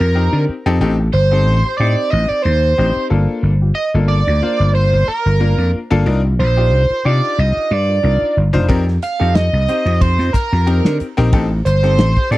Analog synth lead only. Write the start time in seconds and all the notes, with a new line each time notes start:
Already playing: A#4
1.14 C5
1.77 D5
2.10 D#5
2.28 D5
2.42 C5
3.75 D#5
4.08 D5
4.74 C5
5.08 A#4
6.39 C5
7.05 D5
7.39 D#5
7.73 D5
9.03 F5
9.35 D#5
10.01 C5
10.33 A#4
11.65 C5
12.31 D5